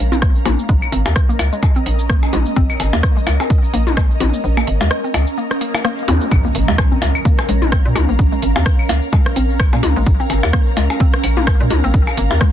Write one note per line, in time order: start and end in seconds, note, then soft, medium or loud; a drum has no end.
0.00 0.43 A#1 medium
0.00 12.52 C#4 medium
0.00 12.52 A#4 medium
0.00 0.53 F5 medium
0.00 12.52 A#5 medium
0.12 0.15 C4 medium
0.12 mid tom medium
0.12 cabasa medium
0.22 kick loud
0.22 cross-stick medium
0.22 cabasa medium
0.35 7.18 D#5 medium
0.35 cabasa soft
0.45 0.57 A#1 loud
0.45 0.51 A#3 medium
0.45 closed hi-hat medium
0.45 mid tom medium
0.45 percussion blips medium
0.59 cabasa medium
0.69 0.89 A#1 loud
0.69 0.71 G#3 medium
0.69 kick loud
0.69 cabasa medium
0.82 cabasa soft
0.82 claves medium
0.92 1.04 G#1 loud
0.92 0.96 C4 medium
0.92 closed hi-hat medium
1.06 1.14 D#2 medium
1.06 percussion blips medium
1.06 cabasa medium
1.06 percussion blips medium
1.16 kick loud
1.16 cross-stick medium
1.16 cabasa medium
1.29 1.33 A#3 medium
1.29 cabasa soft
1.39 1.51 C#2 medium
1.39 closed hi-hat medium
1.39 percussion blips medium
1.39 claves medium
1.53 1.55 G#3 medium
1.53 cabasa medium
1.63 kick loud
1.63 cabasa medium
1.63 percussion blips medium
1.76 1.79 C4 medium
1.76 cabasa soft
1.86 2.30 A#1 medium
1.86 closed hi-hat medium
1.99 cabasa medium
2.10 2.15 A#3 medium
2.10 kick loud
2.10 cross-stick medium
2.10 cabasa medium
2.22 cabasa soft
2.22 percussion blips medium
2.33 2.44 A#1 loud
2.33 2.35 G#3 medium
2.33 closed hi-hat medium
2.33 mid tom medium
2.46 cabasa medium
2.56 2.77 A#1 loud
2.56 2.60 C4 medium
2.56 kick loud
2.56 cabasa medium
2.70 cabasa soft
2.70 claves medium
2.80 2.91 G#1 loud
2.80 closed hi-hat medium
2.80 percussion blips medium
2.93 3.02 D#2 medium
2.93 2.98 A#3 medium
2.93 percussion blips medium
2.93 cabasa medium
3.03 kick loud
3.03 cross-stick medium
3.03 cabasa medium
3.17 3.19 G#3 medium
3.17 cabasa soft
3.27 3.38 C#2 medium
3.27 closed hi-hat medium
3.27 percussion blips medium
3.27 claves medium
3.40 3.43 C4 medium
3.40 cabasa medium
3.40 percussion blips medium
3.50 kick loud
3.50 cabasa medium
3.64 cabasa soft
3.74 4.18 A#1 medium
3.74 3.79 A#3 medium
3.74 closed hi-hat medium
3.87 mid tom medium
3.87 cabasa medium
3.97 3.99 G#3 medium
3.97 kick loud
3.97 cross-stick medium
3.97 cabasa medium
3.97 percussion blips medium
4.11 cabasa soft
4.20 4.32 A#1 loud
4.20 4.24 C4 medium
4.20 closed hi-hat medium
4.20 mid tom medium
4.34 cabasa medium
4.44 4.64 A#1 loud
4.44 cabasa medium
4.57 4.62 A#3 medium
4.57 cabasa soft
4.57 claves medium
4.57 percussion blips medium
4.67 4.79 G#1 loud
4.67 closed hi-hat medium
4.81 4.89 D#2 medium
4.81 4.83 G#3 medium
4.81 percussion blips medium
4.81 cabasa medium
4.91 cross-stick medium
4.91 cabasa medium
5.04 5.07 C4 medium
5.04 cabasa soft
5.14 5.26 C#2 medium
5.14 closed hi-hat medium
5.14 percussion blips medium
5.14 claves medium
5.14 percussion blips medium
5.27 cabasa medium
5.38 5.43 A#3 medium
5.38 swell medium
5.38 cabasa medium
5.51 cross-stick medium
5.51 cabasa soft
5.61 5.65 A#3 medium
5.61 closed hi-hat medium
5.75 5.79 A#3 medium
5.75 percussion blips medium
5.75 cabasa medium
5.75 claves medium
5.75 percussion blips medium
5.85 5.87 A#3 loud
5.85 cross-stick medium
5.85 cabasa medium
5.98 cabasa soft
6.08 6.19 D#2 loud
6.08 6.12 C4 medium
6.08 closed hi-hat medium
6.08 mid tom loud
6.08 zap medium
6.21 6.24 F4 medium
6.21 cabasa medium
6.31 6.52 A#1 loud
6.31 kick loud
6.31 impact medium
6.31 cabasa medium
6.31 claves soft
6.45 6.49 A#3 medium
6.45 cabasa soft
6.55 6.66 G#1 loud
6.55 closed hi-hat loud
6.55 cabasa medium
6.61 12.52 F5 medium
6.68 6.77 D#2 medium
6.68 6.70 G#3 medium
6.68 percussion blips medium
6.68 cabasa soft
6.78 kick loud
6.78 cross-stick loud
6.78 cabasa medium
6.78 percussion blips medium
6.92 6.95 C4 medium
6.92 cabasa soft
7.02 7.13 C#2 medium
7.02 closed hi-hat medium
7.02 percussion blips medium
7.02 cabasa medium
7.15 cabasa soft
7.15 claves soft
7.25 7.31 A#3 medium
7.25 kick loud
7.25 cabasa soft
7.38 cross-stick medium
7.38 cabasa soft
7.38 percussion blips medium
7.49 7.85 A#1 medium
7.49 7.51 G#3 medium
7.49 closed hi-hat medium
7.49 cabasa medium
7.62 mid tom medium
7.62 cabasa soft
7.72 7.76 C4 medium
7.72 kick loud
7.72 cross-stick loud
7.72 cabasa medium
7.85 7.94 A#2 medium
7.85 cabasa soft
7.96 8.07 C#2 loud
7.96 closed hi-hat medium
7.96 mid tom loud
7.96 cabasa loud
7.96 claves soft
7.96 percussion blips medium
8.09 8.17 A#1 medium
8.09 8.13 A#3 medium
8.09 cabasa soft
8.19 8.39 A#1 loud
8.19 kick loud
8.19 cabasa medium
8.31 8.34 G#3 medium
8.31 cabasa soft
8.42 8.54 G#1 loud
8.42 closed hi-hat loud
8.42 cabasa medium
8.56 8.64 D#2 loud
8.56 8.59 C4 medium
8.56 percussion blips medium
8.56 cabasa soft
8.56 percussion blips medium
8.66 kick loud
8.66 cross-stick loud
8.66 cabasa medium
8.79 cabasa soft
8.79 claves soft
8.89 9.01 C#2 medium
8.89 8.95 A#3 medium
8.89 closed hi-hat loud
8.89 percussion blips medium
8.89 cabasa loud
9.03 cabasa soft
9.12 9.15 G#3 medium
9.12 kick loud
9.12 cabasa medium
9.12 percussion blips medium
9.26 cross-stick medium
9.26 cabasa soft
9.36 9.72 A#1 medium
9.36 9.40 C4 medium
9.36 closed hi-hat loud
9.36 cabasa loud
9.50 cabasa soft
9.59 kick loud
9.59 cross-stick loud
9.59 cabasa medium
9.59 claves soft
9.73 9.81 A#2 medium
9.73 9.77 A#3 medium
9.73 cabasa soft
9.73 percussion blips medium
9.83 9.94 C#2 loud
9.83 closed hi-hat medium
9.83 mid tom loud
9.83 cabasa medium
9.96 10.05 A#1 medium
9.96 9.98 G#3 medium
9.96 cabasa soft
10.06 10.27 A#1 loud
10.06 kick loud
10.06 cabasa medium
10.20 10.23 C4 medium
10.20 cabasa soft
10.30 10.41 G#1 loud
10.30 closed hi-hat loud
10.30 cabasa loud
10.30 percussion blips medium
10.43 10.52 D#2 medium
10.43 percussion blips medium
10.43 cabasa soft
10.43 claves soft
10.53 10.59 A#3 medium
10.53 kick loud
10.53 cross-stick medium
10.53 cabasa medium
10.67 cabasa soft
10.77 10.88 C#2 medium
10.77 10.79 G#3 medium
10.77 closed hi-hat loud
10.77 percussion blips medium
10.77 cabasa loud
10.90 cabasa soft
10.90 percussion blips medium
11.00 11.04 C4 medium
11.00 kick loud
11.00 cabasa medium
11.13 cross-stick medium
11.13 cabasa soft
11.24 11.60 A#1 medium
11.24 closed hi-hat loud
11.24 cabasa loud
11.24 claves soft
11.37 11.41 A#3 medium
11.37 mid tom medium
11.37 cabasa soft
11.47 kick loud
11.47 cross-stick loud
11.47 cabasa medium
11.47 percussion blips medium
11.60 11.69 A#2 medium
11.60 11.62 G#3 medium
11.60 cabasa soft
11.70 11.82 C#2 loud
11.70 closed hi-hat loud
11.70 mid tom loud
11.70 cabasa medium
11.84 11.92 A#1 medium
11.84 11.87 C4 medium
11.84 cabasa soft
11.94 12.14 A#1 loud
11.94 kick loud
11.94 cabasa medium
12.07 cabasa soft
12.07 claves soft
12.07 percussion blips medium
12.17 12.29 G#1 loud
12.17 12.23 A#3 medium
12.17 closed hi-hat loud
12.17 cabasa loud
12.31 12.39 D#2 medium
12.31 percussion blips medium
12.31 cabasa soft
12.41 12.43 G#3 medium
12.41 kick loud
12.41 cross-stick medium
12.41 cabasa soft